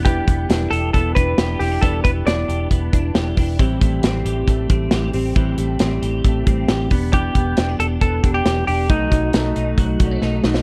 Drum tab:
HH |x-x-x-x-x-x-x-o-|x-x-x-x-x-x-x-o-|x-x-x-x-x-x-x-o-|x-x-x-x-x-x-x-o-|
SD |----o-------o---|----o-------o---|----o-------o---|----o-------o---|
BD |o-o-----o-o-----|o-o-----o-o---o-|o-o-----o-o-----|o-------o-o---o-|

HH |x-x-x-x-x-x-x-o-|x-x-x-x-x-x-----|
SD |----o-------o---|----o-------o-oo|
BD |o-o-----o-o-----|o-o-----o-o-----|